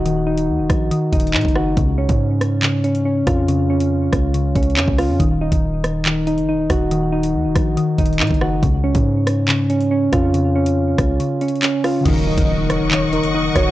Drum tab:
CC |------------------------------------------------|------------------------------------------------|------------------------------------------------|------------------------------------------------|
HH |x--------x--------x-----x-----x-x-x-x-x-x-------|x--------x--------x-----x-----x--x--------x-----|x--------x--------x-----x-----x-x-x-x-----o-----|x--------x--------x-----x-----x--x--------x-----|
CP |------------------------------------x-----------|------------------------x-----------------------|------------------------------------x-----------|------------------------x-----------------------|
SD |------------------r-----------------------r-----|------------------r-----------------------r-----|------------------r-----------------------r-----|------------------r-----------------------r-----|
BD |------------------o-----------o--------o--------|o--------o--------------------------------o-----|------------------o-----------o--------o--------|o--------o--------------------------------o-----|

CC |------------------------------------------------|------------------------------------------------|------------------------------------------------|x-----------------------------------------------|
HH |x--------x--------x-----x-----x-x-x-x-x-x-------|x--------x--------x-----x-----x--x--------x-----|x--------x--------x-----x-----x-x-x-x-----o-----|x--------x--------x-----x-----x--x--------x-----|
CP |------------------------------------x-----------|------------------------x-----------------------|------------------------------------x-----------|------------------------x-----------------------|
SD |------------------r-----------------------r-----|------------------r-----------------------r-----|------------------r-----------------------r-----|------------------r-----------------------r-----|
BD |------------------o-----------o--------o--------|o--------o--------------------------------o-----|------------------o-----------------------------|o--------o--------------------------------o-----|